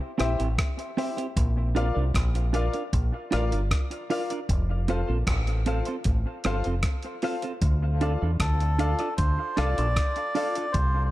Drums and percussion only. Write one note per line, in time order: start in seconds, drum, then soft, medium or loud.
0.20 cross-stick medium
0.20 closed hi-hat medium
0.40 closed hi-hat soft
0.58 kick loud
0.58 cross-stick loud
0.58 closed hi-hat medium
0.79 closed hi-hat soft
0.98 open hi-hat medium
1.18 closed hi-hat medium
1.37 kick loud
1.37 closed hi-hat medium
1.76 closed hi-hat medium
2.14 kick loud
2.14 cross-stick loud
2.14 closed hi-hat medium
2.35 closed hi-hat soft
2.54 closed hi-hat medium
2.74 closed hi-hat soft
2.93 kick loud
2.93 closed hi-hat medium
3.32 cross-stick medium
3.32 closed hi-hat medium
3.52 closed hi-hat medium
3.71 kick loud
3.71 cross-stick loud
3.71 closed hi-hat medium
3.91 closed hi-hat soft
4.10 open hi-hat medium
4.30 closed hi-hat medium
4.49 kick loud
4.49 closed hi-hat medium
4.88 closed hi-hat medium
5.27 kick medium
5.27 cross-stick loud
5.27 closed hi-hat medium
5.47 closed hi-hat medium
5.66 closed hi-hat medium
5.85 closed hi-hat soft
6.04 kick loud
6.04 closed hi-hat medium
6.44 cross-stick medium
6.44 closed hi-hat medium
6.64 closed hi-hat soft
6.83 kick loud
6.83 cross-stick loud
6.83 closed hi-hat medium
7.03 closed hi-hat soft
7.22 open hi-hat medium
7.42 closed hi-hat medium
7.62 kick loud
7.62 closed hi-hat medium
8.01 closed hi-hat soft
8.40 kick loud
8.40 cross-stick loud
8.40 closed hi-hat medium
8.60 closed hi-hat soft
8.79 closed hi-hat medium
8.99 closed hi-hat medium
9.18 kick loud
9.18 closed hi-hat medium
9.57 cross-stick medium
9.57 closed hi-hat medium
9.78 closed hi-hat medium
9.96 kick loud
9.96 cross-stick loud
9.96 closed hi-hat medium
10.16 closed hi-hat soft
10.35 open hi-hat medium
10.55 closed hi-hat medium
10.74 kick loud
10.74 closed hi-hat medium